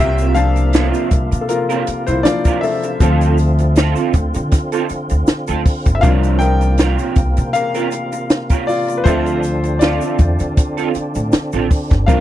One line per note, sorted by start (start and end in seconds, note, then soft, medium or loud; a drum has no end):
0.00 0.90 C2 loud
0.00 2.98 C3 medium
0.00 2.97 A#3 medium
0.00 0.33 C4 medium
0.00 0.33 F4 medium
0.00 9.01 F4 medium
0.00 0.34 G4 medium
0.00 0.34 A#4 medium
0.00 0.37 E5 loud
0.18 closed hi-hat soft
0.18 shaker soft
0.35 2.23 F3 medium
0.35 2.23 A#3 medium
0.35 2.24 D4 medium
0.35 1.46 F5 loud
0.35 1.39 A5 medium
0.35 closed hi-hat medium
0.35 shaker soft
0.56 muted clean electric guitar stroke soft
0.56 closed hi-hat soft
0.56 shaker soft
0.73 0.89 B3 medium
0.73 0.88 E4 medium
0.73 0.89 A4 medium
0.73 snare loud
0.73 closed hi-hat medium
0.73 shaker medium
0.88 1.09 C4 medium
0.88 1.09 F4 medium
0.88 1.09 A#4 medium
0.94 closed hi-hat medium
0.94 shaker medium
1.11 1.28 C2 medium
1.11 muted clean electric guitar stroke soft
1.11 kick medium
1.11 closed hi-hat medium
1.11 shaker soft
1.32 1.77 C3 medium
1.32 muted clean electric guitar stroke soft
1.32 closed hi-hat medium
1.32 shaker soft
1.41 1.49 A4 medium
1.49 2.04 F4 medium
1.49 2.09 A#4 medium
1.49 muted clean electric guitar stroke soft
1.49 closed hi-hat medium
1.49 shaker medium
1.69 1.83 C4 medium
1.69 1.82 F4 medium
1.69 1.82 A#4 medium
1.69 closed hi-hat soft
1.69 shaker soft
1.87 muted clean electric guitar stroke soft
1.87 muted upright bass stroke soft
1.87 closed hi-hat medium
1.87 shaker soft
2.07 2.22 C2 medium
2.07 2.24 E4 medium
2.07 2.23 C5 medium
2.07 muted clean electric guitar stroke soft
2.07 closed hi-hat soft
2.07 shaker soft
2.23 2.59 F3 soft
2.23 2.59 A#3 soft
2.23 2.59 D4 medium
2.23 2.61 F4 medium
2.23 2.63 D5 medium
2.23 muted clean electric guitar stroke soft
2.23 snare loud
2.23 closed hi-hat medium
2.23 shaker medium
2.45 2.59 C4 medium
2.45 2.58 F4 medium
2.45 2.58 A#4 medium
2.45 kick medium
2.45 closed hi-hat medium
2.45 shaker medium
2.61 3.73 A4 medium
2.61 3.71 E5 medium
2.61 muted clean electric guitar stroke soft
2.61 open hi-hat medium
2.61 shaker soft
2.83 muted clean electric guitar stroke soft
2.83 closed hi-hat medium
2.83 shaker soft
3.00 3.93 D2 loud
3.00 6.01 D3 medium
3.00 3.52 F3 medium
3.00 3.52 C4 medium
3.00 6.00 C4 medium
3.00 3.36 C4 medium
3.00 3.53 F4 medium
3.00 3.36 F4 medium
3.00 3.37 A4 medium
3.00 kick medium
3.00 closed hi-hat medium
3.00 shaker medium
3.21 closed hi-hat soft
3.21 shaker soft
3.38 closed hi-hat medium
3.38 shaker soft
3.58 muted clean electric guitar stroke soft
3.58 closed hi-hat soft
3.58 shaker soft
3.75 4.11 C4 medium
3.75 4.12 F4 medium
3.75 4.12 A4 medium
3.75 snare medium
3.75 closed hi-hat medium
3.75 shaker medium
3.96 closed hi-hat medium
3.96 shaker medium
4.13 4.31 D2 medium
4.13 muted clean electric guitar stroke soft
4.13 kick medium
4.13 closed hi-hat medium
4.13 shaker soft
4.34 4.49 D3 medium
4.34 muted clean electric guitar stroke soft
4.34 closed hi-hat medium
4.34 shaker soft
4.51 muted clean electric guitar stroke soft
4.51 kick medium
4.51 snare soft
4.51 closed hi-hat medium
4.51 shaker medium
4.72 4.86 C4 medium
4.72 4.85 F4 medium
4.72 4.85 A4 medium
4.72 closed hi-hat soft
4.72 shaker soft
4.89 muted clean electric guitar stroke soft
4.89 muted upright bass stroke soft
4.89 closed hi-hat medium
4.89 shaker soft
5.09 5.25 D2 medium
5.09 muted clean electric guitar stroke soft
5.09 closed hi-hat medium
5.09 shaker soft
5.27 muted clean electric guitar stroke soft
5.27 muted upright bass stroke soft
5.27 snare loud
5.27 closed hi-hat medium
5.27 shaker medium
5.47 5.63 D2 medium
5.47 5.61 C4 medium
5.47 5.61 F4 medium
5.47 5.61 A4 medium
5.47 closed hi-hat medium
5.47 shaker medium
5.65 muted clean electric guitar stroke soft
5.65 kick medium
5.65 open hi-hat medium
5.65 shaker soft
5.85 6.00 G1 medium
5.85 muted clean electric guitar stroke medium
5.85 kick medium
5.85 closed hi-hat medium
5.85 shaker soft
5.95 6.02 E5 medium
6.01 6.95 C2 loud
6.01 9.03 C3 medium
6.01 9.01 F3 medium
6.01 9.01 A#3 medium
6.01 9.02 A#3 medium
6.01 6.38 C4 medium
6.01 9.02 D4 medium
6.01 6.39 F4 medium
6.01 6.12 A#4 medium
6.01 6.39 A#4 medium
6.01 6.10 F5 loud
6.01 kick medium
6.01 closed hi-hat medium
6.01 shaker medium
6.23 closed hi-hat soft
6.23 shaker soft
6.39 7.13 A#4 medium
6.39 7.12 G5 loud
6.39 closed hi-hat medium
6.39 shaker soft
6.61 muted clean electric guitar stroke soft
6.61 closed hi-hat soft
6.61 shaker soft
6.77 7.14 C4 medium
6.77 7.14 F4 medium
6.77 7.14 A#4 medium
6.77 snare loud
6.77 closed hi-hat medium
6.77 shaker medium
6.99 closed hi-hat medium
6.99 shaker medium
7.15 7.33 C2 loud
7.15 muted clean electric guitar stroke soft
7.15 kick medium
7.15 closed hi-hat medium
7.15 shaker soft
7.37 7.52 C3 loud
7.37 muted clean electric guitar stroke soft
7.37 closed hi-hat medium
7.37 shaker soft
7.53 8.27 A#4 medium
7.53 8.25 F5 loud
7.53 muted clean electric guitar stroke soft
7.53 closed hi-hat medium
7.53 shaker medium
7.74 7.88 C4 medium
7.74 7.88 F4 medium
7.74 7.87 A#4 medium
7.74 closed hi-hat medium
7.74 shaker soft
7.91 muted clean electric guitar stroke soft
7.91 closed hi-hat medium
7.91 shaker soft
8.12 muted clean electric guitar stroke soft
8.12 closed hi-hat soft
8.12 shaker soft
8.30 muted clean electric guitar stroke soft
8.30 snare medium
8.30 closed hi-hat medium
8.30 shaker medium
8.49 8.64 C4 medium
8.49 8.63 F4 medium
8.49 8.63 A#4 medium
8.49 kick medium
8.49 closed hi-hat medium
8.49 shaker medium
8.67 8.98 F4 medium
8.67 9.00 D5 medium
8.67 muted clean electric guitar stroke soft
8.67 open hi-hat medium
8.67 shaker soft
8.88 muted clean electric guitar stroke soft
8.88 closed hi-hat medium
8.88 shaker soft
8.98 9.05 B4 medium
9.04 9.98 D2 loud
9.04 12.05 D3 medium
9.04 12.03 F3 medium
9.04 12.04 C4 medium
9.04 9.41 C4 medium
9.04 12.05 C4 medium
9.04 12.20 D4 medium
9.04 9.41 F4 medium
9.04 9.78 F4 medium
9.04 9.41 A4 medium
9.04 9.83 C5 loud
9.04 12.04 E5 medium
9.04 kick loud
9.04 closed hi-hat medium
9.04 shaker medium
9.26 closed hi-hat soft
9.26 shaker soft
9.43 closed hi-hat medium
9.43 shaker medium
9.63 muted clean electric guitar stroke soft
9.63 closed hi-hat soft
9.63 shaker soft
9.79 10.16 C4 medium
9.79 11.29 F4 medium
9.79 10.17 F4 medium
9.79 10.17 A4 medium
9.79 11.27 D5 medium
9.79 snare loud
9.79 closed hi-hat medium
9.79 shaker medium
10.01 closed hi-hat medium
10.01 shaker medium
10.19 10.36 E2 loud
10.19 muted clean electric guitar stroke soft
10.19 kick medium
10.19 closed hi-hat medium
10.19 shaker medium
10.39 10.54 D3 medium
10.39 muted clean electric guitar stroke soft
10.39 closed hi-hat medium
10.39 shaker soft
10.57 muted clean electric guitar stroke soft
10.57 kick loud
10.57 closed hi-hat loud
10.57 shaker medium
10.77 10.90 C4 medium
10.77 10.90 F4 medium
10.77 10.90 A4 medium
10.77 closed hi-hat soft
10.77 shaker soft
10.94 muted clean electric guitar stroke soft
10.94 muted upright bass stroke soft
10.94 closed hi-hat medium
10.94 shaker soft
11.15 11.30 A2 medium
11.15 muted clean electric guitar stroke soft
11.15 closed hi-hat soft
11.15 shaker medium
11.32 muted clean electric guitar stroke soft
11.32 muted upright bass stroke soft
11.32 snare loud
11.32 closed hi-hat medium
11.32 shaker medium
11.52 11.67 A1 medium
11.52 11.66 C4 medium
11.52 11.66 F4 medium
11.52 11.66 A4 medium
11.52 closed hi-hat medium
11.52 shaker medium
11.70 muted clean electric guitar stroke soft
11.70 kick medium
11.70 open hi-hat medium
11.70 shaker soft
11.90 12.05 G1 medium
11.90 muted clean electric guitar stroke soft
11.90 kick medium
11.90 snare soft
11.90 closed hi-hat medium
11.90 shaker soft
12.06 12.20 C2 loud
12.06 12.20 C3 medium
12.06 12.20 F3 medium
12.06 12.20 A#3 medium
12.06 12.20 C4 medium
12.06 12.20 D4 medium
12.06 12.20 F4 medium
12.06 12.20 A#4 medium
12.06 12.20 F5 medium
12.06 kick loud
12.06 closed hi-hat medium
12.06 shaker medium